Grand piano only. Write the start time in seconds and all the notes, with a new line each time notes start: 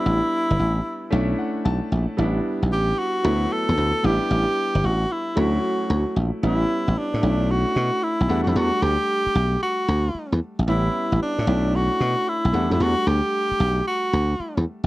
Already playing: G3 B3 D4 E4
1.11 A3 C#4 D4 E4
1.39 F#5
1.65 A5
2.17 G3 B3 D4 E4
3.23 F#3 A3 B3 E4
4.03 G3 B3 D4 E4
5.36 F#3 A3 C#4 E4
6.43 G3 B3 C#4 E4
7.22 A3 C#4 D4 E4
8.28 G3 A3 D4 F#5
10.67 G3 B3 C#4 E4
11.46 A3 C#4 D4 E4
12.52 G3 A3 D4 F#5